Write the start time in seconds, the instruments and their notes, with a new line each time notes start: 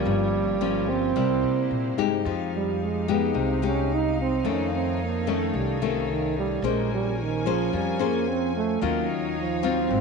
Already playing: nylon-string guitar F3 A#3 C#4, trombone G3, string section C#5
0.06 upright bass G1, nylon-string guitar G2, string section A#3 F4 G4
0.61 nylon-string guitar F3 A#3 C#4
0.89 trombone C4
1.16 upright bass C2, nylon-string guitar C3 G3 A#3 E4, string section A#3 E4 C5
1.43 upright bass C3
1.71 upright bass A#2
1.98 upright bass G2, nylon-string guitar G#3 D#4 G4
2.25 upright bass F2, nylon-string guitar F3, string section D#4 G4 F5
2.56 trombone G3
2.83 trombone G#3
3.08 nylon-string guitar G#3 D#4 G4, trombone B3
3.34 upright bass C2, nylon-string guitar C3
3.39 trombone C4
3.62 nylon-string guitar G#3 D#4 G4
3.66 trombone C#4
3.94 trombone D#4
4.21 trombone C4
4.44 nylon-string guitar F2 D#3 A3 C#4, upright bass F2, string section A4 C#5
4.50 trombone C#4
4.75 trombone C4
5.04 trombone A#3
5.27 nylon-string guitar D#3 A3 C#4, trombone A3
5.54 upright bass C2, trombone G3
5.82 trombone C3, nylon-string guitar D#3 A3 C#4
6.11 trombone D#3
6.38 trombone G3
6.62 upright bass A#1, trombone G#3, nylon-string guitar A#3 C#4 G#4 C5, string section C#4 A#4 C5 G#5
6.93 trombone G3
7.21 trombone D#3
7.46 trombone F3, nylon-string guitar C#4 G#4 C5
7.73 upright bass F2, nylon-string guitar F3, trombone G3
7.99 trombone A#3, nylon-string guitar C#4 G#4 C5
8.29 trombone C4
8.56 trombone A3
8.82 upright bass D#2, nylon-string guitar D#3 F#3 C#4 F4, trombone A#3, string section D#4 C#5 F5
9.11 trombone C#3
9.39 trombone F3
9.63 nylon-string guitar F#3 C4 F4, trombone C4
9.90 upright bass G#1, nylon-string guitar G#2, string section C4 A#4